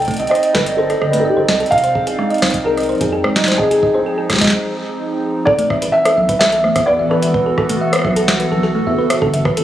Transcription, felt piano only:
Already playing: G5
0.30 D#5
0.53 B4
0.77 A4
1.11 B4
1.20 A4
1.29 G4
1.38 A4
1.71 F5
2.64 A#4
3.58 G#4
5.45 D5
5.92 E5
6.39 E5
6.86 D5
7.09 B4

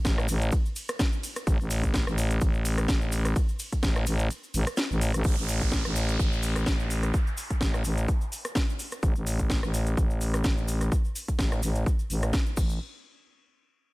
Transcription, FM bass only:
0.05 A1
0.29 A1
1.47 A1
1.60 A1
2.07 A1
2.41 A1
2.89 A1
3.83 A1
4.07 A1
4.54 A1
4.91 A1
5.14 A1
5.25 A1
5.38 A1
5.85 A1
6.19 A1
6.67 A1
7.61 A1
7.85 A1
9.03 A1
9.16 A1
9.63 A1
9.97 A1
10.45 A1
11.39 A1
11.63 A1
12.10 A1
12.57 A1

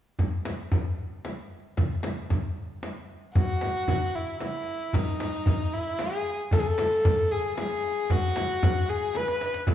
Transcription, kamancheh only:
3.36 F#4
4.15 E4
4.42 E4
4.94 D#4
5.73 E4
5.99 G#4
6.53 A4
6.59 G#4
6.66 A4
7.31 G#4
7.58 G#4
8.11 F#4
8.90 G#4
9.17 B4
9.70 A4

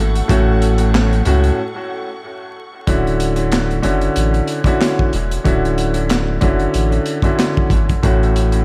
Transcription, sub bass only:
Already playing: G#1
0.30 A1
1.26 C#2
2.88 D1
3.84 F#1
4.17 A1
5.14 E1
5.46 D1
6.42 F#1
6.75 A1
7.70 G#1
8.04 A1

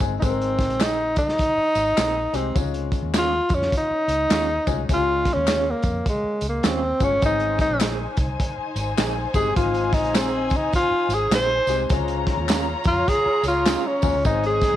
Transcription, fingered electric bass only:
0.01 G1
0.22 G#1
0.70 A#1
1.17 C2
1.57 muted fingered electric bass stroke
1.75 G#1
1.98 A#1
2.33 C2
2.56 C#2
3.03 D#2
3.50 F2
3.91 muted fingered electric bass stroke
4.08 C#2
4.30 D#2
4.67 C2
4.89 C#2
5.36 D#2
5.84 F2
6.24 muted fingered electric bass stroke
6.42 C#2
6.64 D#2
7.00 G1
7.22 G#1
7.69 A#1
8.18 C2
8.58 muted fingered electric bass stroke
8.76 G#1
8.98 A#1
9.34 G1
9.56 G#1
10.03 A#1
10.51 C2
10.91 muted fingered electric bass stroke
11.09 G#1
11.31 A#1
11.67 C2
11.90 C#2
12.37 D#2
12.86 F2
13.26 muted fingered electric bass stroke
13.43 C#2
14.03 D#2
14.13 C#2
14.25 G#1
14.73 A#1

